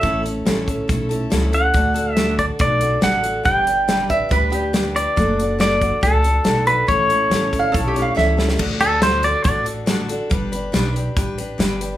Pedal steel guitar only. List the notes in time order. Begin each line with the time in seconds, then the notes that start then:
Already playing: E5
1.54 F#5
2.12 E5
2.39 D5
2.61 D5
3.04 F#5
3.45 G5
4.96 D5
5.61 D5
6.03 A4
6.67 B4
6.88 C#5
8.81 A4
9.03 C5
9.24 D5
9.44 D5